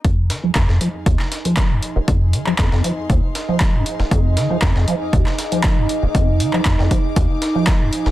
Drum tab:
HH |x-x-x-x-x-xxx-x-|x-x-x-x-x-x-x-x-|x-x-x-x-x-xxx-x-|x-x-x-x-x-x-x-x-|
CP |----x----x--x---|---xx-------x---|----x----x--x---|---xx-------x---|
SD |--o-oo---oo-o---|----oo----o-o--o|--o-oo---oo-o---|----oo----o-o--o|
BD |o---o---o---o---|o---o---o---o---|o---o---o---o---|o---o-o-o---o---|